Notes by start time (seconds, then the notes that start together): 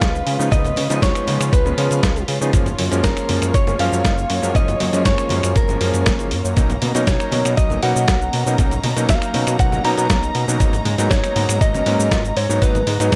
Already playing: G#3 C#4 F4 B4 F5
0.01 C#2 F3 G#3 B3 F4, kick, snare, closed hi-hat, shaker
0.15 shaker
0.27 C#3, open hi-hat
0.39 C#3 F3 G#3 B3 D#4, shaker
0.51 C#2 F3 G#3 B3 D#4 D#5, kick, closed hi-hat, high conga, shaker
0.64 closed hi-hat, low conga, shaker
0.76 C#3, open hi-hat, high conga
0.89 C#3 F3 G#3 B3 D#4, closed hi-hat, shaker
0.91 shaker
0.96 D#5
1.02 C#2 C#5, kick, snare, closed hi-hat, shaker
1.15 finger snap, closed hi-hat, shaker
1.27 C#3 F3 G#3 B3 D#4, open hi-hat, high conga
1.40 C#3, finger snap, closed hi-hat, shaker
1.53 C#2 B4, kick, closed hi-hat, shaker
1.65 F3 G#3 B3 C#4, high conga, low conga, shaker
1.77 C#3 F3 G#3 B3 C#4, open hi-hat
1.91 C#3, closed hi-hat, shaker
2.02 C#2 F3 G#3 B3 F4, kick, snare, closed hi-hat, shaker
2.16 closed hi-hat, shaker
2.28 C#3, open hi-hat
2.41 C#3 F3 G#3 B3 D#4, shaker
2.53 F#1 F3 G#3 A#3 C#4 C#5, kick, closed hi-hat, high conga, shaker
2.66 closed hi-hat, low conga, shaker
2.78 F#2, open hi-hat, high conga
2.91 F#2 F3 G#3 A#3 C#4, closed hi-hat, shaker
3.04 F#1 A#4, kick, snare, closed hi-hat, shaker
3.16 finger snap, closed hi-hat, shaker
3.29 F#2 F3 G#3 A#3 C#4, open hi-hat, high conga
3.42 F#2, finger snap, closed hi-hat, shaker
3.54 F#1 C#5, kick, closed hi-hat, shaker
3.67 F3 G#3 A#3 C#4, high conga, low conga, shaker
3.79 F#2 F3 G#3 A#3 C#4 F5, open hi-hat
3.92 F#2, shaker
4.04 F#1 F3 G#3 A#3 D#4, kick, snare, closed hi-hat, shaker
4.18 shaker
4.30 F#2, open hi-hat
4.42 F#2 F3 G#3 A#3 C#4, shaker
4.54 F#1 F3 G#3 A#3 C#4 D#5, kick, closed hi-hat, high conga, shaker
4.68 closed hi-hat, low conga, shaker
4.80 F#2, open hi-hat, high conga
4.92 F#2 F3 G#3 A#3 C#4, closed hi-hat, shaker
5.05 F#1 C#5, kick, snare, closed hi-hat, shaker
5.18 finger snap, closed hi-hat, shaker
5.29 F#2 F3 G#3 A#3 C#4, open hi-hat, high conga
5.43 F#2, finger snap, closed hi-hat, shaker
5.56 F#1 A#4, kick, closed hi-hat, shaker
5.68 F3 G#3 A#3 C#4, high conga, low conga, shaker
5.69 shaker
5.80 F#2 F3 G#3 A#3 C#4, open hi-hat
5.94 F#2, closed hi-hat, shaker
6.06 F#1, kick, snare, closed hi-hat, shaker
6.19 F3 G#3 A#3 C#4, closed hi-hat, shaker
6.31 F#2, open hi-hat
6.45 F#2, shaker
6.56 B1 F#3 A#3 C#4 D#4 A#5, kick, closed hi-hat, high conga, shaker
6.70 closed hi-hat, low conga, shaker
6.82 B2, open hi-hat, high conga
6.94 B2 F#3 A#3 C#4 D#4, closed hi-hat, shaker
7.06 B1 C#5, kick, snare, closed hi-hat, shaker
7.08 shaker
7.20 finger snap, closed hi-hat, shaker
7.32 B2 F#3 A#3 C#4 D#4, open hi-hat, high conga
7.45 B2, finger snap, closed hi-hat, shaker
7.57 B1 D#5, kick, closed hi-hat, shaker
7.70 F#3 A#3 C#4 D#4, high conga, low conga, shaker
7.83 B2 F#3 A#3 C#4 D#4 F#5, open hi-hat
7.96 B2, shaker
8.08 B1 F#3 A#3 C#4 F#4, kick, snare, closed hi-hat, shaker
8.22 shaker
8.33 B2, open hi-hat
8.46 B2 F#3 A#3 C#4 D#4, shaker
8.58 B1 F#3 A#3 C#4 D#4, kick, closed hi-hat, high conga, shaker
8.71 closed hi-hat, low conga, shaker
8.84 B2, open hi-hat, high conga
8.96 B2 F#3 A#3 C#4 D#4, closed hi-hat, shaker
9.09 B1 F5, kick, snare, closed hi-hat, shaker
9.22 finger snap, closed hi-hat, shaker
9.34 B2 F#3 A#3 C#4 D#4, open hi-hat, high conga
9.47 B2, finger snap, closed hi-hat, shaker
9.59 B1 F#5, kick, closed hi-hat, shaker
9.72 F#3 A#3 C#4 D#4, high conga, low conga, shaker
9.84 B2 F#3 A#3 C#4 D#4 A#5, open hi-hat
9.98 B2, closed hi-hat, shaker
10.09 B1 F#3 A#3 C#4 F#4, kick, snare, closed hi-hat, shaker
10.23 closed hi-hat, shaker
10.35 B2, open hi-hat
10.48 B2 F#3 A#3 C#4 D#4, shaker
10.59 G#1 F#3 G#3 A#3 B3 D#4, kick, closed hi-hat, high conga, shaker
10.73 closed hi-hat, low conga, shaker
10.85 G#2, open hi-hat, high conga
10.98 G#2 F#3 A#3 B3 D#4, closed hi-hat, shaker
11.11 G#1 C#5, kick, snare, closed hi-hat, shaker
11.24 finger snap, closed hi-hat, shaker
11.35 G#2 F#3 A#3 B3 D#4, open hi-hat, high conga
11.49 G#2, finger snap, closed hi-hat, shaker
11.61 G#1 D#5, kick, closed hi-hat, shaker
11.74 F#3 A#3 B3 C#4, high conga, low conga, shaker
11.86 G#2 F#3 A#3 B3 C#4, open hi-hat
11.99 G#2, shaker
12.11 G#1 F#3 A#3 B3 F4, kick, snare, closed hi-hat, shaker
12.25 shaker
12.37 G#2 C#5, open hi-hat
12.49 G#2 F#3 A#3 B3 D#4, shaker
12.62 G#1 F#3 A#3 B3 D#4 G#4 B4, kick, closed hi-hat, high conga, shaker
12.75 closed hi-hat, low conga, shaker
12.87 G#2, open hi-hat, high conga
13.00 G#2 F#3 G#3 B3 D#4, closed hi-hat, shaker
13.12 G#1, kick, snare, closed hi-hat